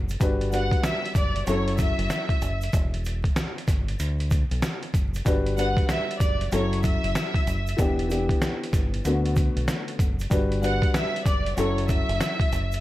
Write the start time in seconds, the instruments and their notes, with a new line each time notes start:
Already playing: fingered electric bass F#1
0.09 closed hi-hat, shaker
0.20 fingered electric bass G1, upright piano G3 D4 F#4 B4, kick, closed hi-hat, shaker
0.41 closed hi-hat
0.51 upright piano G3 D4 F#4 B4, violin section F#5, closed hi-hat, shaker
0.71 kick, closed hi-hat
0.84 violin section E5, snare, closed hi-hat, shaker
1.06 closed hi-hat
1.15 fingered electric bass F#1, violin section D5, kick, closed hi-hat, shaker
1.36 closed hi-hat
1.46 fingered electric bass F#1, upright piano F#3 C#4 E4 A4, violin section C#5, closed hi-hat, shaker
1.68 closed hi-hat
1.78 violin section E5, kick, closed hi-hat, shaker
1.98 fingered electric bass F#1, closed hi-hat
2.10 snare, closed hi-hat, shaker
2.29 kick, closed hi-hat
2.42 fingered electric bass F#1, closed hi-hat, shaker
2.61 closed hi-hat, shaker
2.73 fingered electric bass E1, kick, closed hi-hat, shaker
2.94 closed hi-hat
3.05 closed hi-hat, shaker
3.24 kick, closed hi-hat
3.36 snare, closed hi-hat, shaker
3.58 closed hi-hat
3.68 fingered electric bass G1, kick, snare, closed hi-hat, shaker
3.88 closed hi-hat
3.99 fingered electric bass D2, closed hi-hat, shaker
4.20 closed hi-hat
4.30 kick, closed hi-hat, shaker
4.51 fingered electric bass B1, closed hi-hat
4.62 snare, closed hi-hat, shaker
4.83 closed hi-hat
4.94 fingered electric bass F#1, kick, closed hi-hat, shaker
5.14 closed hi-hat, shaker
5.25 fingered electric bass G1, upright piano G3 D4 F#4 B4, kick, closed hi-hat, shaker
5.46 closed hi-hat
5.56 upright piano G3 D4 F#4 B4, violin section F#5, closed hi-hat, shaker
5.77 kick, closed hi-hat
5.89 violin section E5, snare, closed hi-hat, shaker
6.11 closed hi-hat
6.19 fingered electric bass F#1, violin section D5, kick, closed hi-hat, shaker
6.41 closed hi-hat
6.52 fingered electric bass F#1, upright piano F#3 C#4 E4 A4, violin section C#5, closed hi-hat, shaker
6.73 closed hi-hat
6.83 violin section E5, kick, closed hi-hat, shaker
7.04 fingered electric bass F#1, closed hi-hat
7.15 snare, closed hi-hat, shaker
7.34 kick, closed hi-hat
7.47 fingered electric bass F#1, closed hi-hat, shaker
7.67 closed hi-hat, shaker
7.77 fingered electric bass E1, upright piano E3 B3 D4 G4, kick, closed hi-hat, shaker
7.99 closed hi-hat
8.09 upright piano E3 B3 D4 G4, closed hi-hat, shaker
8.29 kick, closed hi-hat
8.42 snare, closed hi-hat, shaker
8.64 closed hi-hat
8.73 fingered electric bass G1, kick, snare, closed hi-hat, shaker
8.94 closed hi-hat
9.04 fingered electric bass D2, upright piano D3 A3 B3 F#4, closed hi-hat, shaker
9.25 closed hi-hat
9.36 kick, closed hi-hat, shaker
9.56 fingered electric bass B1, closed hi-hat
9.68 snare, closed hi-hat, shaker
9.88 closed hi-hat
9.99 fingered electric bass F#1, kick, closed hi-hat, shaker
10.19 closed hi-hat, shaker
10.30 fingered electric bass G1, upright piano G3 D4 F#4 B4, kick, closed hi-hat, shaker
10.52 closed hi-hat
10.61 upright piano G3 D4 F#4 B4, violin section F#5, closed hi-hat, shaker
10.82 kick, closed hi-hat
10.94 violin section E5, snare, closed hi-hat, shaker
11.16 closed hi-hat
11.26 fingered electric bass F#1, violin section D5, kick, closed hi-hat, shaker
11.46 closed hi-hat
11.57 fingered electric bass F#1, upright piano F#3 C#4 E4 A4, violin section C#5, closed hi-hat, shaker
11.78 closed hi-hat
11.88 violin section E5, kick, closed hi-hat, shaker
12.09 fingered electric bass F#1, closed hi-hat
12.21 snare, closed hi-hat, shaker
12.40 kick, closed hi-hat
12.52 fingered electric bass F#1, closed hi-hat, shaker
12.72 closed hi-hat, shaker